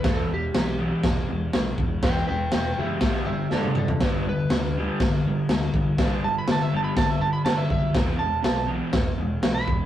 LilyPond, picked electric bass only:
\new Staff \with { instrumentName = "Picked electric bass" } { \clef bass \time 4/4 \key e \minor \tempo 4 = 122 e,,8 e,,8 b,,4 e,,8 e,,8 b,,8 e,,8 | e,,8 e,,8 e,,8 fis,,8 g,,8 g,,8 g,,8 g,,8 | g,,8 g,,8 d,4 g,,8 g,,8 d,8 g,,8 | g,,8 g,,8 g,,8 g,,8 g,,8 g,,8 g,,8 fis,,8 |
e,,8 e,,8 b,,4 e,,8 e,,8 b,,8 e,,8 | }